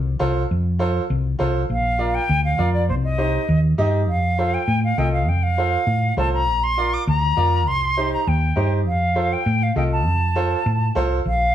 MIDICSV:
0, 0, Header, 1, 4, 480
1, 0, Start_track
1, 0, Tempo, 298805
1, 806, Time_signature, 4, 2, 24, 8
1, 18552, End_track
2, 0, Start_track
2, 0, Title_t, "Flute"
2, 0, Program_c, 0, 73
2, 2758, Note_on_c, 0, 77, 92
2, 3449, Note_on_c, 0, 79, 104
2, 3473, Note_off_c, 0, 77, 0
2, 3917, Note_off_c, 0, 79, 0
2, 3926, Note_on_c, 0, 77, 92
2, 4372, Note_off_c, 0, 77, 0
2, 4396, Note_on_c, 0, 74, 77
2, 4623, Note_off_c, 0, 74, 0
2, 4642, Note_on_c, 0, 72, 84
2, 4738, Note_off_c, 0, 72, 0
2, 4882, Note_on_c, 0, 75, 94
2, 5779, Note_off_c, 0, 75, 0
2, 6568, Note_on_c, 0, 77, 87
2, 7295, Note_on_c, 0, 79, 84
2, 7319, Note_off_c, 0, 77, 0
2, 7770, Note_off_c, 0, 79, 0
2, 7778, Note_on_c, 0, 77, 87
2, 8006, Note_on_c, 0, 79, 89
2, 8031, Note_off_c, 0, 77, 0
2, 8228, Note_off_c, 0, 79, 0
2, 8238, Note_on_c, 0, 77, 74
2, 8496, Note_on_c, 0, 79, 85
2, 8520, Note_off_c, 0, 77, 0
2, 8727, Note_on_c, 0, 77, 99
2, 8751, Note_off_c, 0, 79, 0
2, 9920, Note_off_c, 0, 77, 0
2, 9930, Note_on_c, 0, 81, 88
2, 10152, Note_off_c, 0, 81, 0
2, 10179, Note_on_c, 0, 82, 94
2, 10661, Note_on_c, 0, 84, 100
2, 10685, Note_off_c, 0, 82, 0
2, 11143, Note_on_c, 0, 86, 94
2, 11167, Note_off_c, 0, 84, 0
2, 11366, Note_off_c, 0, 86, 0
2, 11375, Note_on_c, 0, 82, 100
2, 12330, Note_on_c, 0, 84, 101
2, 12354, Note_off_c, 0, 82, 0
2, 13049, Note_off_c, 0, 84, 0
2, 13064, Note_on_c, 0, 82, 88
2, 13303, Note_on_c, 0, 79, 88
2, 13327, Note_off_c, 0, 82, 0
2, 14016, Note_off_c, 0, 79, 0
2, 14262, Note_on_c, 0, 77, 92
2, 14986, Note_on_c, 0, 79, 86
2, 15010, Note_off_c, 0, 77, 0
2, 15470, Note_on_c, 0, 77, 82
2, 15494, Note_off_c, 0, 79, 0
2, 15699, Note_off_c, 0, 77, 0
2, 15706, Note_on_c, 0, 79, 77
2, 15803, Note_off_c, 0, 79, 0
2, 15944, Note_on_c, 0, 81, 78
2, 17711, Note_off_c, 0, 81, 0
2, 18106, Note_on_c, 0, 77, 94
2, 18552, Note_off_c, 0, 77, 0
2, 18552, End_track
3, 0, Start_track
3, 0, Title_t, "Upright piano"
3, 0, Program_c, 1, 0
3, 311, Note_on_c, 1, 65, 88
3, 318, Note_on_c, 1, 69, 74
3, 321, Note_on_c, 1, 72, 89
3, 655, Note_off_c, 1, 65, 0
3, 658, Note_off_c, 1, 69, 0
3, 660, Note_off_c, 1, 72, 0
3, 1271, Note_on_c, 1, 65, 79
3, 1276, Note_on_c, 1, 69, 78
3, 1286, Note_on_c, 1, 72, 89
3, 1615, Note_off_c, 1, 65, 0
3, 1617, Note_off_c, 1, 69, 0
3, 1622, Note_off_c, 1, 72, 0
3, 2227, Note_on_c, 1, 65, 84
3, 2237, Note_on_c, 1, 69, 75
3, 2242, Note_on_c, 1, 72, 90
3, 2572, Note_off_c, 1, 65, 0
3, 2577, Note_off_c, 1, 69, 0
3, 2580, Note_off_c, 1, 72, 0
3, 3187, Note_on_c, 1, 65, 68
3, 3197, Note_on_c, 1, 70, 61
3, 3200, Note_on_c, 1, 74, 77
3, 3532, Note_off_c, 1, 65, 0
3, 3537, Note_off_c, 1, 70, 0
3, 3539, Note_off_c, 1, 74, 0
3, 4145, Note_on_c, 1, 65, 68
3, 4148, Note_on_c, 1, 70, 63
3, 4157, Note_on_c, 1, 74, 77
3, 4491, Note_off_c, 1, 65, 0
3, 4493, Note_off_c, 1, 70, 0
3, 4497, Note_off_c, 1, 74, 0
3, 5104, Note_on_c, 1, 63, 67
3, 5107, Note_on_c, 1, 67, 63
3, 5119, Note_on_c, 1, 72, 77
3, 5451, Note_off_c, 1, 63, 0
3, 5452, Note_off_c, 1, 67, 0
3, 5458, Note_off_c, 1, 72, 0
3, 6073, Note_on_c, 1, 63, 82
3, 6075, Note_on_c, 1, 67, 74
3, 6081, Note_on_c, 1, 75, 97
3, 6415, Note_off_c, 1, 63, 0
3, 6416, Note_off_c, 1, 67, 0
3, 6419, Note_off_c, 1, 75, 0
3, 7037, Note_on_c, 1, 65, 71
3, 7044, Note_on_c, 1, 69, 64
3, 7048, Note_on_c, 1, 72, 71
3, 7377, Note_off_c, 1, 65, 0
3, 7381, Note_off_c, 1, 69, 0
3, 7383, Note_off_c, 1, 72, 0
3, 7993, Note_on_c, 1, 65, 66
3, 8001, Note_on_c, 1, 69, 68
3, 8004, Note_on_c, 1, 75, 75
3, 8335, Note_off_c, 1, 65, 0
3, 8339, Note_off_c, 1, 69, 0
3, 8341, Note_off_c, 1, 75, 0
3, 8958, Note_on_c, 1, 65, 69
3, 8967, Note_on_c, 1, 72, 76
3, 8968, Note_on_c, 1, 69, 61
3, 9298, Note_off_c, 1, 65, 0
3, 9303, Note_off_c, 1, 69, 0
3, 9303, Note_off_c, 1, 72, 0
3, 9910, Note_on_c, 1, 65, 67
3, 9919, Note_on_c, 1, 69, 65
3, 9924, Note_on_c, 1, 72, 83
3, 10254, Note_off_c, 1, 65, 0
3, 10259, Note_off_c, 1, 69, 0
3, 10261, Note_off_c, 1, 72, 0
3, 10879, Note_on_c, 1, 65, 70
3, 10883, Note_on_c, 1, 70, 60
3, 10890, Note_on_c, 1, 74, 81
3, 11219, Note_off_c, 1, 65, 0
3, 11221, Note_off_c, 1, 70, 0
3, 11224, Note_off_c, 1, 74, 0
3, 11831, Note_on_c, 1, 65, 73
3, 11837, Note_on_c, 1, 70, 70
3, 11842, Note_on_c, 1, 74, 78
3, 12175, Note_off_c, 1, 65, 0
3, 12178, Note_off_c, 1, 70, 0
3, 12181, Note_off_c, 1, 74, 0
3, 12802, Note_on_c, 1, 63, 73
3, 12808, Note_on_c, 1, 67, 65
3, 12812, Note_on_c, 1, 72, 74
3, 13141, Note_off_c, 1, 63, 0
3, 13144, Note_off_c, 1, 67, 0
3, 13146, Note_off_c, 1, 72, 0
3, 13746, Note_on_c, 1, 63, 72
3, 13758, Note_on_c, 1, 67, 64
3, 13762, Note_on_c, 1, 72, 80
3, 14093, Note_off_c, 1, 63, 0
3, 14099, Note_off_c, 1, 67, 0
3, 14101, Note_off_c, 1, 72, 0
3, 14701, Note_on_c, 1, 65, 65
3, 14708, Note_on_c, 1, 69, 66
3, 14716, Note_on_c, 1, 72, 77
3, 15051, Note_off_c, 1, 65, 0
3, 15054, Note_off_c, 1, 69, 0
3, 15058, Note_off_c, 1, 72, 0
3, 15671, Note_on_c, 1, 65, 66
3, 15677, Note_on_c, 1, 69, 68
3, 15685, Note_on_c, 1, 75, 77
3, 16016, Note_off_c, 1, 65, 0
3, 16019, Note_off_c, 1, 69, 0
3, 16023, Note_off_c, 1, 75, 0
3, 16634, Note_on_c, 1, 65, 81
3, 16641, Note_on_c, 1, 69, 72
3, 16648, Note_on_c, 1, 72, 90
3, 16978, Note_off_c, 1, 65, 0
3, 16981, Note_off_c, 1, 69, 0
3, 16985, Note_off_c, 1, 72, 0
3, 17592, Note_on_c, 1, 65, 82
3, 17600, Note_on_c, 1, 69, 83
3, 17609, Note_on_c, 1, 72, 96
3, 17937, Note_off_c, 1, 65, 0
3, 17941, Note_off_c, 1, 69, 0
3, 17946, Note_off_c, 1, 72, 0
3, 18552, End_track
4, 0, Start_track
4, 0, Title_t, "Fingered electric bass"
4, 0, Program_c, 2, 33
4, 0, Note_on_c, 2, 36, 97
4, 232, Note_off_c, 2, 36, 0
4, 328, Note_on_c, 2, 36, 87
4, 711, Note_off_c, 2, 36, 0
4, 819, Note_on_c, 2, 41, 86
4, 1581, Note_off_c, 2, 41, 0
4, 1768, Note_on_c, 2, 36, 90
4, 2151, Note_off_c, 2, 36, 0
4, 2249, Note_on_c, 2, 36, 78
4, 2631, Note_off_c, 2, 36, 0
4, 2725, Note_on_c, 2, 34, 87
4, 3493, Note_off_c, 2, 34, 0
4, 3684, Note_on_c, 2, 38, 98
4, 4068, Note_off_c, 2, 38, 0
4, 4160, Note_on_c, 2, 41, 91
4, 4647, Note_on_c, 2, 36, 91
4, 4671, Note_off_c, 2, 41, 0
4, 5414, Note_off_c, 2, 36, 0
4, 5601, Note_on_c, 2, 39, 95
4, 5987, Note_off_c, 2, 39, 0
4, 6080, Note_on_c, 2, 43, 101
4, 6558, Note_off_c, 2, 43, 0
4, 6558, Note_on_c, 2, 41, 92
4, 7329, Note_off_c, 2, 41, 0
4, 7513, Note_on_c, 2, 45, 91
4, 7902, Note_off_c, 2, 45, 0
4, 7997, Note_on_c, 2, 36, 95
4, 8474, Note_off_c, 2, 36, 0
4, 8474, Note_on_c, 2, 41, 88
4, 9247, Note_off_c, 2, 41, 0
4, 9426, Note_on_c, 2, 45, 96
4, 9818, Note_off_c, 2, 45, 0
4, 9911, Note_on_c, 2, 36, 92
4, 10403, Note_off_c, 2, 36, 0
4, 10403, Note_on_c, 2, 34, 87
4, 11173, Note_off_c, 2, 34, 0
4, 11364, Note_on_c, 2, 38, 104
4, 11749, Note_off_c, 2, 38, 0
4, 11844, Note_on_c, 2, 41, 93
4, 12328, Note_off_c, 2, 41, 0
4, 12328, Note_on_c, 2, 36, 94
4, 13096, Note_off_c, 2, 36, 0
4, 13289, Note_on_c, 2, 39, 102
4, 13673, Note_off_c, 2, 39, 0
4, 13760, Note_on_c, 2, 43, 96
4, 14242, Note_off_c, 2, 43, 0
4, 14242, Note_on_c, 2, 41, 99
4, 15013, Note_off_c, 2, 41, 0
4, 15199, Note_on_c, 2, 45, 101
4, 15587, Note_off_c, 2, 45, 0
4, 15675, Note_on_c, 2, 36, 91
4, 16161, Note_off_c, 2, 36, 0
4, 16161, Note_on_c, 2, 41, 98
4, 16932, Note_off_c, 2, 41, 0
4, 17123, Note_on_c, 2, 45, 101
4, 17510, Note_off_c, 2, 45, 0
4, 17604, Note_on_c, 2, 36, 96
4, 17990, Note_off_c, 2, 36, 0
4, 18080, Note_on_c, 2, 34, 91
4, 18552, Note_off_c, 2, 34, 0
4, 18552, End_track
0, 0, End_of_file